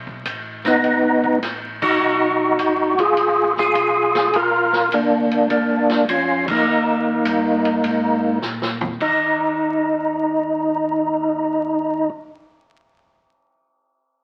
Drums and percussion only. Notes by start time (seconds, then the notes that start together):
0.07 kick
0.25 kick, hi-hat pedal, ride
0.65 snare, ride
0.84 kick, ride
1.24 kick
1.42 kick, snare, hi-hat pedal, ride
1.82 kick, crash
2.59 kick, hi-hat pedal, ride
2.98 kick, ride
3.17 kick, ride
3.57 snare
3.75 kick, hi-hat pedal, ride
4.15 snare, ride
4.33 kick, ride
4.73 snare
4.92 kick, hi-hat pedal, ride
5.31 ride
5.50 kick, ride
5.89 snare, ride
6.08 kick, hi-hat pedal, ride
6.48 kick, crash
7.25 kick, hi-hat pedal, ride
7.65 ride
7.84 kick, ride
8.42 snare, hi-hat pedal
8.62 snare
8.81 floor tom
9.01 kick, crash
9.40 cymbal swell